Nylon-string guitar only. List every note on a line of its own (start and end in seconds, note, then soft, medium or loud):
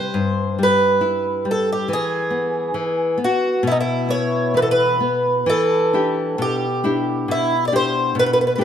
0.00 0.10 C3 soft
0.00 0.13 G3 soft
0.14 1.86 G2 medium
0.59 1.02 G3 soft
1.01 1.44 E4 medium
1.45 1.88 G3 soft
1.88 2.73 E3 medium
2.30 2.73 B3 soft
2.74 3.17 E3 medium
3.18 3.62 B3 soft
3.63 5.43 B2 medium
4.09 4.53 B3 soft
4.54 4.99 E3 soft
5.00 5.46 B3 soft
5.46 6.35 E3 medium
5.93 6.65 D4 soft
5.93 6.65 E4 soft
5.93 6.66 G4 soft
6.38 7.25 B2 medium
6.84 7.54 D4 soft
6.84 7.55 E4 soft
6.84 7.55 G4 medium
7.28 8.13 B2 medium
7.72 8.42 D4 soft
7.72 8.42 E4 soft
7.72 8.42 G4 soft
8.15 8.64 B2 medium
8.58 8.64 D4 medium
8.58 8.64 E4 soft
8.58 8.64 G4 medium